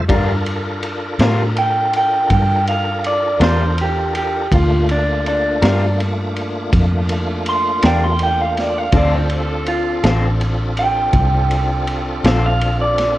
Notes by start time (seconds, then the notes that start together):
0.09 G2 G3 D4 F4 A4 A#4, kick, ride
0.46 ride
0.83 ride
1.19 A2 G3 D4 F4 A#4, snare, ride
1.57 G5, ride
1.93 G5, ride
2.30 G2 G5, kick, ride
2.67 F5, ride
3.04 D5, ride
3.40 E2 G3 D4 F4 A#4 C5, snare, ride
3.78 G4, ride
4.15 G4, ride
4.52 D2 A3 A#3 D4 F4, kick, ride
4.89 D4, ride
5.26 D4, ride
5.62 G2 G3 D4 F4 A#4, snare, ride
6.00 ride
6.36 ride
6.73 F2, kick, ride
7.09 ride
7.46 C6, ride
7.83 E2 G3 D4 F4 A#4 G5, snare, ride
8.04 C6
8.19 ride
8.23 G5
8.41 F5
8.57 D5, snare, ride
8.78 F5
8.92 D2 D3 C4 D4 F4 A4, kick, ride
8.97 D5
9.15 C5
9.30 A4, ride
9.67 F4, ride
10.04 A1 D3 C4 F4 A4, snare, ride
10.41 ride
10.77 G5, ride
11.13 C2, kick, ride
11.51 ride
11.87 ride
12.24 A#1 D3 C4 F4 A4, snare, ride
12.46 F5
12.61 ride
12.81 D5
12.98 snare, ride